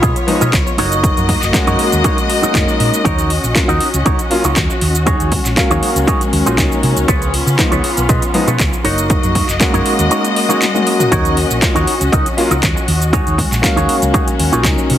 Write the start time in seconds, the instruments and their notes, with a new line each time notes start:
Already playing: string section B3 F4 C#5
0.02 clean electric guitar F4 G#4 B4 D#5, kick, closed hi-hat, cabasa
0.16 closed hi-hat, cabasa
0.27 grand piano F3 G#3 B3 D#4, muted clean electric guitar stroke, open hi-hat
0.41 fingered electric bass B2, clean electric guitar F4 G#4 B4 D#5, closed hi-hat, cabasa
0.53 fingered electric bass C#2, kick, clap, closed hi-hat, cabasa
0.66 muted clean electric guitar stroke, cabasa
0.78 fingered electric bass F#1, string section A#3 F#4 D#5, clean electric guitar D#4 F#4 A#4 C#5, open hi-hat
0.92 closed hi-hat, cabasa
1.04 kick, closed hi-hat, cabasa
1.17 fingered electric bass F#2, closed hi-hat, cabasa
1.29 kick, open hi-hat
1.43 fingered electric bass F#1, clap, cabasa
1.52 grand piano G#3 A#3 C#4 F#4, muted clean electric guitar stroke, kick, clap, closed hi-hat, cabasa
1.67 fingered electric bass F#2, clean electric guitar D#4 F#4 A#4 C#5, closed hi-hat, cabasa
1.79 muted fingered electric bass stroke, open hi-hat
1.92 fingered electric bass D#2, closed hi-hat, cabasa
2.04 clean electric guitar D#4 F#4 A#4 C#5, kick, closed hi-hat, cabasa
2.18 closed hi-hat, cabasa
2.29 muted clean electric guitar stroke, open hi-hat
2.42 grand piano G#3 A#3 C#4 F#4, clean electric guitar D#4 F#4 A#4 D#5, muted fingered electric bass stroke, closed hi-hat, cabasa
2.54 fingered electric bass F#1, grand piano G#3 A#3 C#4 D#4, kick, clap, closed hi-hat, cabasa
2.68 muted clean electric guitar stroke, cabasa
2.80 fingered electric bass A#2, open hi-hat
2.94 closed hi-hat, cabasa
3.04 fingered electric bass D#2, string section C#4 F#4, clean electric guitar D#4 F#4 A#4 C#5, kick, closed hi-hat, cabasa
3.19 closed hi-hat, cabasa
3.30 open hi-hat
3.44 fingered electric bass A#1, cabasa
3.54 grand piano F#3 A#3 C#4 F4, muted clean electric guitar stroke, kick, clap, closed hi-hat, cabasa
3.68 fingered electric bass D#2, clean electric guitar D#4 F#4 A#4 D#5, closed hi-hat, cabasa
3.80 muted fingered electric bass stroke, open hi-hat
3.94 fingered electric bass C#2, closed hi-hat, cabasa
4.05 clean electric guitar D#4 F#4 A#4 C#5, kick, closed hi-hat, cabasa
4.19 closed hi-hat, cabasa
4.30 grand piano F#3 A#3 C#4 F4, muted clean electric guitar stroke, open hi-hat
4.44 fingered electric bass C#2, clean electric guitar D#4 F#4 A#4 C#5, closed hi-hat, cabasa
4.56 fingered electric bass D#2, kick, clap, closed hi-hat, cabasa
4.70 muted clean electric guitar stroke, cabasa
4.81 fingered electric bass D#2, open hi-hat
4.95 closed hi-hat, cabasa
5.06 string section G#3 C#4, clean electric guitar D#4 F#4 G#4 C#5, kick, closed hi-hat, cabasa
5.20 fingered electric bass D#2, closed hi-hat, cabasa
5.32 kick, open hi-hat
5.45 fingered electric bass A#1, clap, cabasa
5.56 grand piano F#3 A#3 C#4 F5, muted clean electric guitar stroke, kick, clap, closed hi-hat, cabasa
5.70 fingered electric bass D#2, clean electric guitar D#4 F#4 G#4 C#5, closed hi-hat, cabasa
5.83 muted fingered electric bass stroke, open hi-hat
5.96 fingered electric bass C#2, closed hi-hat, cabasa
6.07 clean electric guitar D#4 F#4 G#4 C#5, kick, closed hi-hat, cabasa
6.21 muted fingered electric bass stroke, closed hi-hat, cabasa
6.33 fingered electric bass D#2, muted clean electric guitar stroke, open hi-hat
6.46 fingered electric bass A#1, grand piano F#3 A#3 C#4 F4, clean electric guitar D#4 F#4 G#4 C5, closed hi-hat, cabasa
6.58 fingered electric bass C#2, grand piano F#3 A#3 C#4 D#4, kick, clap, closed hi-hat, cabasa
6.71 muted clean electric guitar stroke, cabasa
6.83 fingered electric bass C3, open hi-hat
6.97 fingered electric bass C#2, closed hi-hat, cabasa
7.08 string section B3 F4, clean electric guitar F4 G#4 B4 C#5, kick, closed hi-hat, cabasa
7.22 closed hi-hat, cabasa
7.34 open hi-hat
7.46 fingered electric bass C#3, cabasa
7.58 grand piano F3 G#3 B3 D#4, muted clean electric guitar stroke, kick, clap, closed hi-hat, cabasa
7.71 fingered electric bass C#2, clean electric guitar F4 G#4 B4 C#5, closed hi-hat, cabasa
7.84 open hi-hat
7.97 fingered electric bass B1, closed hi-hat, cabasa
8.09 fingered electric bass B2, clean electric guitar F4 G#4 B4 D#5, kick, closed hi-hat, cabasa
8.22 closed hi-hat, cabasa
8.34 grand piano F3 G#3 B3 D#4, muted clean electric guitar stroke, open hi-hat
8.47 fingered electric bass B2, clean electric guitar F4 G#4 B4 C#5, closed hi-hat, cabasa
8.59 fingered electric bass C#2, kick, clap, closed hi-hat, cabasa
8.73 muted clean electric guitar stroke, cabasa
8.84 fingered electric bass F#1, string section A#3 F#4 D#5, clean electric guitar D#4 F#4 A#4 C#5, open hi-hat
8.98 closed hi-hat, cabasa
9.10 kick, closed hi-hat, cabasa
9.23 fingered electric bass F#2, closed hi-hat, cabasa
9.35 kick, open hi-hat
9.48 fingered electric bass F#1, clap, closed hi-hat, cabasa
9.60 grand piano G#3 A#3 C#4 F#4, muted clean electric guitar stroke, kick, clap, closed hi-hat, cabasa
9.73 fingered electric bass F#2, clean electric guitar D#4 F#4 A#4 C#5, closed hi-hat, cabasa
9.86 muted fingered electric bass stroke, open hi-hat
9.99 fingered electric bass D#2, closed hi-hat, cabasa
10.11 clean electric guitar D#4 F#4 A#4 C#5, closed hi-hat, cabasa
10.25 closed hi-hat, cabasa
10.36 muted clean electric guitar stroke, open hi-hat
10.49 grand piano G#3 A#3 C#4 F#4, clean electric guitar D#4 F#4 A#4 C#5, closed hi-hat, cabasa
10.62 clap, closed hi-hat, high tom, cabasa
10.74 grand piano G#3 A#3 C#4 F#4, muted clean electric guitar stroke, high tom, cabasa
10.87 open hi-hat
10.99 grand piano F#3 A#3 C#4 F#4, closed hi-hat, mid tom, cabasa
11.11 fingered electric bass D#2, string section C#4, clean electric guitar D#4 F#4 A#4 C#5, kick, closed hi-hat, cabasa
11.25 closed hi-hat, cabasa
11.37 open hi-hat
11.50 fingered electric bass A#1, cabasa
11.61 grand piano F#3 A#3 C#4 F4, muted clean electric guitar stroke, kick, clap, closed hi-hat, cabasa
11.75 fingered electric bass D#2, clean electric guitar D#4 F#4 A#4 C#5, closed hi-hat, cabasa
11.87 open hi-hat
12.01 fingered electric bass C#2, closed hi-hat, cabasa
12.12 fingered electric bass C#2, clean electric guitar D#4 F#4 A#4 D#5, kick, closed hi-hat, cabasa
12.26 closed hi-hat, cabasa
12.37 grand piano F#3 A#3 C#4 F4, muted clean electric guitar stroke, open hi-hat
12.50 fingered electric bass C#2, clean electric guitar D#4 F#4 A#4 D#5, closed hi-hat, cabasa
12.63 fingered electric bass D#2, kick, clap, closed hi-hat, cabasa
12.76 muted clean electric guitar stroke, cabasa
12.88 fingered electric bass D#2, open hi-hat
13.02 closed hi-hat, cabasa
13.13 string section G#3 C#4, clean electric guitar D#4 F#4 G#4 C#5, kick, closed hi-hat, cabasa
13.26 fingered electric bass D#2, closed hi-hat, cabasa
13.38 kick, open hi-hat
13.52 fingered electric bass A#1, clap, cabasa
13.62 grand piano F#3 A#3 C#4 F5, muted clean electric guitar stroke, kick, clap, closed hi-hat, cabasa
13.76 fingered electric bass D#2, clean electric guitar D#4 F#4 G#4 C#5, closed hi-hat, cabasa
13.89 muted fingered electric bass stroke, open hi-hat
14.02 fingered electric bass C#2, closed hi-hat, cabasa
14.13 clean electric guitar D#4 F#4 G#4 C#5, kick, closed hi-hat, cabasa
14.28 muted fingered electric bass stroke, closed hi-hat, cabasa
14.39 fingered electric bass D#2, muted clean electric guitar stroke, open hi-hat
14.52 fingered electric bass A#1, grand piano F#3 A#3 C#4 F4, clean electric guitar D#4 F#4 G#4 C#5, closed hi-hat, cabasa
14.64 fingered electric bass C#2, grand piano F#3 A#3 C#4 D#4, kick, clap, closed hi-hat, cabasa
14.78 muted clean electric guitar stroke, cabasa
14.90 fingered electric bass C3, open hi-hat